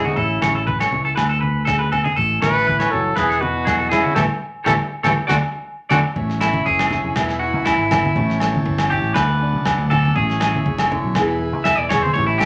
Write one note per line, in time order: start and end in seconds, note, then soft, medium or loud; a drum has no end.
0.00 0.18 G#3 medium
0.05 0.77 C#3 medium
0.05 0.77 E4 medium
0.05 0.16 F#4 medium
0.05 high conga medium
0.16 0.38 A1 medium
0.16 0.40 A4 medium
0.16 muted nylon-string guitar stroke medium
0.16 kick medium
0.42 0.85 A1 medium
0.42 1.15 C#4 medium
0.42 0.54 C#5 medium
0.42 snare medium
0.42 high conga medium
0.42 low agogo medium
0.55 0.66 A4 medium
0.67 0.79 B4 medium
0.67 kick medium
0.67 high conga medium
0.80 1.04 C#5 medium
0.80 snare medium
0.80 low agogo medium
0.91 1.13 C#2 medium
0.91 1.18 E3 medium
0.91 low conga medium
1.05 1.15 A4 medium
1.16 2.03 D2 medium
1.16 1.68 D3 medium
1.16 1.29 B4 medium
1.16 kick medium
1.16 snare medium
1.16 low agogo medium
1.29 1.40 A4 medium
1.41 1.65 B4 medium
1.41 high conga medium
1.65 1.92 C#3 medium
1.65 1.78 A4 medium
1.65 kick medium
1.65 snare medium
1.65 low conga medium
1.65 low agogo medium
1.79 1.91 B4 medium
1.92 2.17 B2 medium
1.92 2.04 A4 medium
1.92 low conga medium
1.92 low agogo medium
2.04 2.16 G#4 medium
2.04 high conga medium
2.16 2.39 A1 medium
2.16 3.14 A2 medium
2.16 2.40 A4 medium
2.16 kick medium
2.42 2.85 A1 medium
2.42 2.93 E3 medium
2.42 3.14 E4 medium
2.42 2.93 B4 loud
2.42 2.54 C#5 medium
2.42 snare medium
2.42 high conga medium
2.42 low agogo medium
2.54 2.66 A4 medium
2.67 2.79 B4 medium
2.67 kick medium
2.67 high conga medium
2.80 3.03 C#5 medium
2.80 snare medium
2.80 low agogo medium
2.91 3.14 F#1 medium
2.91 3.15 E3 medium
2.91 3.19 F#3 medium
2.91 3.19 A4 medium
2.91 low conga medium
3.16 4.03 E1 medium
3.16 3.66 E3 medium
3.16 3.44 E3 medium
3.16 4.14 B3 medium
3.16 3.41 E4 medium
3.16 3.43 G#4 medium
3.16 3.29 B4 medium
3.16 kick medium
3.16 snare medium
3.16 low agogo medium
3.29 3.41 A4 medium
3.29 snare soft
3.41 3.92 B2 medium
3.41 4.14 E4 medium
3.41 3.91 F#4 medium
3.41 3.65 B4 medium
3.41 high conga medium
3.65 3.91 F#3 medium
3.65 3.78 G#4 medium
3.65 kick medium
3.65 snare medium
3.65 low conga medium
3.65 low agogo medium
3.78 3.89 A4 medium
3.89 4.15 C#3 medium
3.89 4.15 G#3 medium
3.89 4.15 E4 medium
3.89 4.03 G#4 medium
3.89 snare medium
3.89 low conga medium
3.89 low agogo medium
4.04 4.15 F#4 medium
4.04 high conga medium
4.15 4.26 A1 loud
4.15 4.24 E3 medium
4.15 4.25 E3 medium
4.15 4.24 G3 medium
4.15 4.24 A3 medium
4.15 4.24 G4 medium
4.15 4.24 A4 medium
4.15 4.22 A4 medium
4.15 4.24 C#5 medium
4.15 kick medium
4.15 snare medium
4.15 high conga medium
4.15 low agogo medium
4.64 4.76 A1 medium
4.64 4.75 E3 medium
4.64 4.73 E3 medium
4.64 4.75 G3 medium
4.64 4.75 A3 medium
4.64 4.74 G4 medium
4.64 4.74 A4 medium
4.64 4.73 A4 medium
4.64 4.74 C#5 medium
4.64 kick medium
4.64 snare medium
4.64 high conga medium
4.64 low agogo medium
5.03 5.13 A1 medium
5.03 5.12 E3 medium
5.03 5.12 G3 medium
5.03 5.12 A3 medium
5.03 5.12 G4 medium
5.03 5.09 A4 medium
5.03 5.12 A4 medium
5.03 5.12 C#5 medium
5.03 kick medium
5.03 snare medium
5.03 high conga loud
5.03 low agogo loud
5.27 5.38 D2 medium
5.27 5.37 D3 medium
5.27 5.36 D3 medium
5.27 5.37 F#3 medium
5.27 5.37 A3 medium
5.27 5.36 F#4 medium
5.27 5.35 F#4 medium
5.27 5.36 A4 medium
5.27 5.36 D5 medium
5.27 kick medium
5.27 snare medium
5.27 high conga medium
5.27 low agogo medium
5.89 6.01 D2 medium
5.89 6.00 D3 medium
5.89 5.99 D3 medium
5.89 6.00 F#3 medium
5.89 6.00 A3 medium
5.89 5.99 F#4 medium
5.89 5.97 F#4 medium
5.89 5.99 A4 medium
5.89 5.99 D5 medium
5.89 kick medium
5.89 snare medium
5.89 high conga loud
5.89 low agogo medium
6.16 6.59 A1 loud
6.16 7.13 A2 medium
6.16 6.42 C#4 medium
6.16 7.15 C#5 medium
6.16 7.15 E5 medium
6.16 kick loud
6.16 low conga medium
6.30 snare soft
6.41 7.14 C#4 medium
6.41 6.65 E4 medium
6.41 snare medium
6.41 low agogo medium
6.53 high conga medium
6.66 6.99 F#1 loud
6.66 7.16 E3 medium
6.66 7.37 G#4 medium
6.66 kick loud
6.79 snare medium
6.79 low agogo medium
6.90 7.14 E4 medium
6.90 snare soft
6.90 low conga medium
7.04 7.14 F1 medium
7.16 7.54 E1 loud
7.16 8.64 E3 medium
7.16 7.66 B3 medium
7.16 7.41 E4 medium
7.16 8.16 B4 medium
7.16 8.15 E5 medium
7.16 8.16 G#5 medium
7.16 kick medium
7.16 snare medium
7.16 low agogo medium
7.29 snare soft
7.39 8.14 E4 medium
7.39 7.64 F#4 medium
7.54 7.75 C#2 medium
7.65 7.92 B3 medium
7.65 8.36 E4 medium
7.65 kick medium
7.65 snare medium
7.65 low agogo medium
7.77 8.10 G#1 medium
7.91 8.14 B3 medium
7.91 snare medium
7.91 high conga medium
7.91 low conga medium
7.91 low agogo medium
8.05 high conga medium
8.16 8.59 A1 loud
8.16 9.13 A2 medium
8.16 9.13 C#4 medium
8.16 9.15 C#5 medium
8.16 9.15 G5 medium
8.16 10.14 A5 medium
8.16 kick medium
8.16 low conga medium
8.30 snare soft
8.40 8.91 E4 medium
8.40 snare medium
8.40 low agogo medium
8.55 high conga medium
8.65 8.98 G1 medium
8.65 9.15 E3 medium
8.65 kick medium
8.78 snare medium
8.78 low agogo medium
8.90 9.14 E4 medium
8.90 9.14 G4 loud
8.90 low conga medium
9.02 9.13 A1 medium
9.14 9.55 D2 loud
9.14 10.16 A3 medium
9.14 9.86 B4 loud
9.14 10.16 D5 medium
9.14 10.15 F#5 medium
9.14 muted nylon-string guitar stroke medium
9.14 kick medium
9.14 snare medium
9.14 low agogo medium
9.41 10.13 D4 medium
9.53 9.75 C#2 medium
9.66 10.13 F#3 medium
9.66 kick medium
9.66 snare medium
9.66 low agogo medium
9.78 10.10 D2 loud
9.90 10.16 F#4 medium
9.90 10.15 A4 loud
9.90 high conga medium
9.90 low conga medium
9.90 low agogo medium
10.05 high conga medium
10.16 10.59 A1 loud
10.16 11.13 A2 medium
10.16 11.13 C#4 medium
10.16 10.87 G#4 medium
10.16 11.15 C#5 medium
10.16 12.14 E5 medium
10.16 kick loud
10.16 low conga medium
10.30 snare soft
10.40 11.13 E4 medium
10.40 snare medium
10.40 low agogo medium
10.55 high conga medium
10.65 10.98 F#1 loud
10.65 10.90 C#3 medium
10.65 kick medium
10.78 snare medium
10.78 low agogo medium
10.90 11.15 D3 medium
10.90 low conga medium
11.04 11.14 B1 medium
11.15 11.53 E1 loud
11.15 12.15 E3 medium
11.15 11.65 B3 medium
11.15 12.14 E4 medium
11.15 11.39 G#4 medium
11.15 12.15 B4 medium
11.15 12.16 G#5 medium
11.15 kick loud
11.15 snare medium
11.15 low agogo medium
11.41 11.91 G#4 medium
11.53 11.75 C#2 medium
11.64 12.13 B3 medium
11.64 11.78 E5 loud
11.64 kick loud
11.64 snare medium
11.64 low agogo medium
11.78 12.10 E1 medium
11.78 11.89 D5 loud
11.89 12.13 G#4 medium
11.89 12.03 C#5 medium
11.89 snare medium
11.89 high conga medium
11.89 low conga medium
11.89 low agogo medium
12.03 12.13 C5 medium
12.03 high conga medium
12.14 12.45 A1 loud
12.14 12.45 A2 medium
12.14 12.45 E3 medium
12.14 12.45 C#4 medium
12.14 12.26 C#5 loud
12.14 12.45 C#5 medium
12.14 12.45 G5 medium
12.14 12.45 A5 medium
12.14 kick loud
12.18 12.42 E4 medium
12.18 12.45 G4 medium
12.26 12.39 E4 medium
12.38 12.45 G4 loud
12.38 snare medium
12.38 low conga medium
12.38 low agogo medium